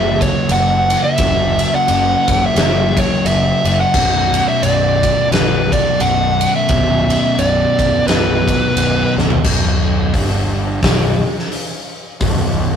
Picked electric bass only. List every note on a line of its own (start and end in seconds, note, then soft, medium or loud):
0.00 0.25 F#1 loud
0.48 0.93 F#1 medium
1.18 1.62 F#1 medium
1.87 2.13 F#1 loud
2.28 2.46 F#1 loud
2.55 2.99 F#1 loud
3.24 3.50 F#1 loud
3.64 3.83 F#1 medium
3.94 4.38 B0 loud
4.62 5.07 B0 loud
5.31 5.75 B0 loud
6.00 6.44 B0 loud
6.69 7.14 B0 loud
7.38 7.64 B0 loud
7.78 7.97 B0 medium
8.07 8.51 B0 loud
8.76 9.02 B0 loud
9.16 9.35 B0 medium
9.44 10.10 B0 loud
10.13 10.79 G1 loud
10.83 11.20 B0 medium
12.21 12.76 B0 loud